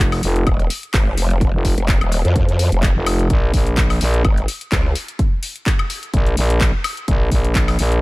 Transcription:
Already playing: fm bass F1
0.12 open hi-hat, high woodblock
0.23 fm bass F1, open hi-hat
0.36 closed hi-hat
0.47 wobble bass D#1, kick, closed hi-hat, high woodblock
0.60 closed hi-hat
0.70 open hi-hat
0.83 closed hi-hat
0.94 wobble bass G#1, kick, clap, closed hi-hat
1.17 wobble bass F1, open hi-hat
1.30 closed hi-hat
1.41 kick, closed hi-hat
1.54 fm bass F1
1.65 kick, open hi-hat
1.78 wobble bass F1, closed hi-hat
1.88 kick, clap, closed hi-hat
2.01 wobble bass D#1, closed hi-hat, high woodblock
2.12 open hi-hat
2.25 wobble bass F2, closed hi-hat
2.36 kick, closed hi-hat
2.49 closed hi-hat
2.59 open hi-hat
2.72 wobble bass F1, closed hi-hat
2.83 kick, clap, closed hi-hat
2.96 fm bass F1
3.06 open hi-hat, high woodblock
3.19 closed hi-hat
3.30 fm bass A#1, kick, closed hi-hat
3.54 fm bass A#1, kick, open hi-hat
3.67 closed hi-hat
3.77 kick, clap, closed hi-hat
3.90 open hi-hat, high woodblock
4.01 fm bass A#1, open hi-hat
4.14 closed hi-hat
4.25 wobble bass G#1, kick, closed hi-hat, high woodblock
4.38 closed hi-hat
4.48 open hi-hat
4.61 closed hi-hat
4.72 wobble bass C#2, kick, clap, closed hi-hat
4.95 open hi-hat
5.08 closed hi-hat
5.19 kick, closed hi-hat
5.43 open hi-hat
5.56 closed hi-hat
5.66 kick, clap, closed hi-hat
5.79 closed hi-hat, high woodblock
5.90 open hi-hat
6.03 closed hi-hat
6.14 fm bass A#1, kick, closed hi-hat
6.26 closed hi-hat
6.37 fm bass A#1, open hi-hat
6.50 closed hi-hat
6.61 kick, clap, closed hi-hat
6.84 open hi-hat, high woodblock
6.97 closed hi-hat
7.08 fm bass A#1, kick, closed hi-hat
7.32 fm bass A#1, kick, open hi-hat
7.44 closed hi-hat
7.55 kick, clap, closed hi-hat
7.68 open hi-hat, high woodblock
7.79 fm bass A#1, open hi-hat
7.92 closed hi-hat

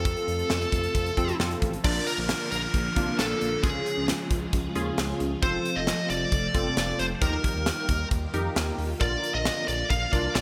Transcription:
Already playing: analog synth bass F2, string machine C3 F3 A3 F4 A4, analog polysynth C4 F4 A4, lead electric guitar A4
0.05 kick, closed hi-hat
0.17 closed hi-hat
0.28 analog synth bass F2, closed hi-hat
0.39 closed hi-hat
0.50 analog synth bass F2, snare
0.61 closed hi-hat
0.72 analog synth bass F2, kick, closed hi-hat
0.83 closed hi-hat
0.95 analog synth bass F2, kick, closed hi-hat
1.06 closed hi-hat
1.17 analog synth bass F2, analog polysynth C4 F4 A4, kick, closed hi-hat
1.29 closed hi-hat
1.40 analog synth bass F2, analog polysynth C4 F4 A4, snare
1.51 closed hi-hat
1.62 analog synth bass A1, kick, closed hi-hat
1.73 closed hi-hat
1.84 analog synth bass A#1, string machine D3 F3 A#3 F4 D5, analog polysynth D4 F4 A#4, lead electric guitar D5, kick, crash, downlifter
2.07 lead electric guitar A#4, closed hi-hat
2.18 analog synth bass A#1
2.29 snare, closed hi-hat
2.51 analog synth bass A#1, lead electric guitar A#4, closed hi-hat
2.74 analog synth bass A#1, kick, closed hi-hat
2.96 analog synth bass C2, analog polysynth A#3 D4 F4, kick, closed hi-hat
3.19 analog synth bass A#1, lead electric guitar A4, snare, closed hi-hat
3.41 analog synth bass A#1, closed hi-hat
3.63 analog synth bass C#2, string machine C#3 F3 G#3 F4 G#4, analog polysynth C#4 F4 G#4, lead electric guitar G#4, kick, closed hi-hat
3.86 closed hi-hat
3.97 analog synth bass C#2
4.08 snare, closed hi-hat
4.31 analog synth bass C#2, kick, closed hi-hat
4.53 analog synth bass C#2, kick, closed hi-hat
4.75 analog synth bass D#2, analog polysynth C#4 F4 G#4, closed hi-hat
4.98 analog synth bass C#2, snare, closed hi-hat
5.20 analog synth bass C#2, closed hi-hat
5.42 analog synth bass F1, string machine C3 A3 A4, analog polysynth C4 F4 A4, lead electric guitar C5, kick, closed hi-hat
5.65 closed hi-hat
5.76 analog synth bass F1, lead electric guitar D#5
5.87 snare, closed hi-hat
6.10 analog synth bass F1, lead electric guitar D5, closed hi-hat
6.32 analog synth bass F1, kick, closed hi-hat
6.54 analog synth bass G1, analog polysynth C4 F4 A4, kick, closed hi-hat
6.77 analog synth bass F1, snare, closed hi-hat
6.99 analog synth bass F1, lead electric guitar C5, closed hi-hat
7.21 analog synth bass D#2, string machine D#3 G3 A#3 F4 G4, analog polysynth D#4 G4 A#4, lead electric guitar A#4, kick, closed hi-hat
7.44 kick, closed hi-hat
7.55 analog synth bass D#2
7.66 snare, closed hi-hat
7.89 analog synth bass D#2, kick, closed hi-hat
8.11 analog synth bass D#2, kick, closed hi-hat
8.34 analog synth bass F2, analog polysynth D#4 G4 A#4, closed hi-hat
8.56 analog synth bass D#2, snare, closed hi-hat
8.78 analog synth bass D#2, open hi-hat
9.01 analog synth bass A#1, analog polysynth D3 F4 A#4, string machine D3 F3 A#4, lead electric guitar D5, kick, closed hi-hat
9.24 closed hi-hat
9.34 analog synth bass A#1, lead electric guitar D#5
9.45 snare, closed hi-hat
9.68 analog synth bass A#1, lead electric guitar D5, closed hi-hat
9.90 analog synth bass A#1, lead electric guitar F5, kick, closed hi-hat
10.13 analog synth bass C2, analog polysynth D4 F4 A#4, lead electric guitar D5, kick, closed hi-hat
10.35 analog synth bass A#1, lead electric guitar D5, snare, closed hi-hat

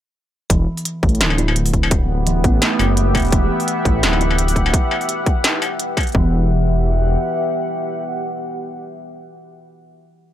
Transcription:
0.50 detuned saw bass E1, kalimba E3, ambient pad B3, kick, closed hi-hat
0.74 ambient pad G4, open hi-hat
0.85 closed hi-hat
1.03 detuned saw bass A1, kick, closed hi-hat
1.09 closed hi-hat
1.15 closed hi-hat
1.20 detuned saw bass D1, snare, closed hi-hat
1.26 ambient pad E5
1.30 struck metal
1.38 kalimba E4, closed hi-hat
1.48 struck metal
1.56 closed hi-hat
1.66 open hi-hat
1.72 ambient pad F#5, kick, closed hi-hat
1.83 struck metal
1.91 kick, closed hi-hat
2.27 kalimba E3, closed hi-hat
2.44 detuned saw bass A1, kalimba B3, kick, closed hi-hat
2.62 kalimba A3, snare, closed hi-hat
2.79 detuned saw bass F#1, open hi-hat, struck metal
2.97 closed hi-hat
3.15 detuned saw bass E1, kick, closed hi-hat, struck metal
3.17 closed hi-hat
3.20 closed hi-hat
3.22 closed hi-hat
3.25 closed hi-hat
3.27 closed hi-hat
3.28 closed hi-hat
3.30 detuned saw bass E1, kalimba E3, closed hi-hat
3.32 kick, closed hi-hat
3.60 open hi-hat
3.68 closed hi-hat
3.85 detuned saw bass A1, kick, closed hi-hat
4.03 detuned saw bass D1, snare, closed hi-hat
4.13 struck metal
4.21 kalimba E4, closed hi-hat
4.31 struck metal
4.38 closed hi-hat
4.48 open hi-hat
4.56 kick, closed hi-hat
4.66 struck metal
4.74 kick, closed hi-hat
4.91 struck metal
5.01 open hi-hat
5.09 closed hi-hat
5.26 kick, closed hi-hat
5.44 snare, closed hi-hat
5.62 open hi-hat, struck metal
5.80 closed hi-hat
5.97 kick, closed hi-hat, struck metal
6.00 closed hi-hat
6.03 closed hi-hat
6.07 closed hi-hat
6.09 closed hi-hat
6.12 detuned saw bass E1, kalimba E3, ambient pad B3, kick, closed hi-hat
6.20 ambient pad G4
6.26 ambient pad E5
6.31 ambient pad F#5

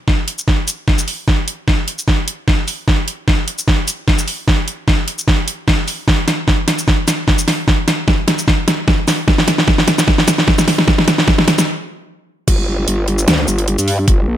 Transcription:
0.08 kick, snare
0.28 closed hi-hat
0.38 shaker
0.48 kick, snare
0.68 closed hi-hat, shaker
0.88 kick, snare
0.98 shaker
1.08 open hi-hat
1.28 kick, snare
1.48 closed hi-hat
1.68 kick, snare
1.88 closed hi-hat
1.98 shaker
2.08 kick, snare
2.28 closed hi-hat
2.48 kick, snare
2.68 open hi-hat, shaker
2.88 kick, snare
3.08 closed hi-hat
3.28 kick, snare
3.48 closed hi-hat
3.58 shaker
3.68 kick, snare
3.88 closed hi-hat, shaker
4.08 kick, snare
4.18 shaker
4.28 open hi-hat
4.48 kick, snare
4.68 closed hi-hat
4.88 kick, snare
5.08 closed hi-hat
5.18 shaker
5.28 kick, snare
5.48 closed hi-hat
5.68 kick, snare
5.88 open hi-hat, shaker
6.08 kick, snare
6.28 snare, closed hi-hat
6.48 kick, snare
6.68 snare, closed hi-hat
6.78 shaker
6.88 kick, snare
7.08 snare, closed hi-hat, shaker
7.28 kick, snare
7.38 shaker
7.48 snare, open hi-hat
7.68 kick, snare
7.88 snare, closed hi-hat
8.08 kick, snare
8.28 snare, closed hi-hat
8.38 shaker
8.48 kick, snare
8.68 snare, closed hi-hat
8.88 kick, snare
9.08 snare, open hi-hat, shaker
9.28 kick, snare
9.38 snare
9.48 snare, closed hi-hat
9.58 snare
9.68 kick, snare
9.78 snare
9.88 snare, closed hi-hat
9.98 snare, shaker
10.08 kick, snare
10.18 snare
10.28 snare, closed hi-hat, shaker
10.38 snare
10.48 kick, snare
10.58 snare, shaker
10.68 snare, open hi-hat
10.78 snare
10.88 kick, snare
10.98 snare
11.08 snare, closed hi-hat
11.18 snare
11.28 kick, snare
11.38 snare
11.48 snare, closed hi-hat
11.58 snare, closed hi-hat, shaker
12.48 wobble bass G1, kick, closed hi-hat, crash
12.88 wobble bass G1, closed hi-hat
13.08 closed hi-hat
13.18 shaker
13.28 wobble bass D2, snare, closed hi-hat
13.48 wobble bass G1, shaker
13.58 closed hi-hat
13.68 closed hi-hat
13.78 wobble bass G2, closed hi-hat, shaker
13.88 open hi-hat
14.08 wobble bass G1, kick, closed hi-hat
14.28 wobble bass A#1

